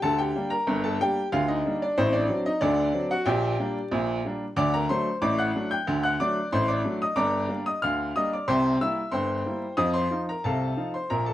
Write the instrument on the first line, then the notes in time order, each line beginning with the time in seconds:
upright piano
0.02 D2 D3 A4 A5
0.18 G4 G5
0.35 G3 A#3 D4
0.50 A#4 A#5
0.67 G1 G2
0.84 A4 A5
1.01 G3 A#3 D4 G4 G5
1.32 D2 D3 F4 F5
1.48 D#4 D#5
1.66 G3 A#3 D4
1.82 D4 D5
1.97 A1 A2 C4 C5
2.13 D4 D5
2.29 F#3 C4 D4
2.46 D#4 D#5
2.61 D2 D3 D4 A4 D5
2.94 F#3 C4 D4
3.11 F#4 F#5
3.26 A#1 A#2 G4 D5 G5
3.59 G3 A#3 D4
3.91 A#1 A#2
4.25 G3 A#3 D4
4.56 D2 D3 D5 D6
4.74 A#4 A#5
4.89 F#3 A3 D4 C5 C6
5.22 A1 A2 D5 D6
5.38 F#5 F#6
5.55 F#3 A3 D4
5.71 G5 G6
5.87 D2 D3
6.03 F#5 F#6
6.20 F#3 A3 D4 D5 D6
6.52 A1 A2 C5 C6
6.68 D5 D6
6.85 F#3 A3 D4
7.02 D#5 D#6
7.16 G1 G2 D5 A#5 D6
7.49 G3 A#3 D4
7.66 D#5 D#6
7.82 D2 D3 F5 F6
8.16 G3 A#3 D4 D#5 D#6
8.33 D5 D6
8.48 C2 C3 C5 G5 C6
8.81 G3 A#3 E4 E5 E6
9.11 G1 G2 C5 G5 C6
9.46 G3 A#3 E4
9.77 F2 F3 D#5 D#6
9.94 C5 C6
10.11 F3 D#4 F4
10.29 A#4 A#5
10.44 C2 C3 A4 F5 A5
10.77 F3 D#4 F4
10.94 C5 C6
11.10 A#1 A#2 A#4 A#5
11.26 A4 A5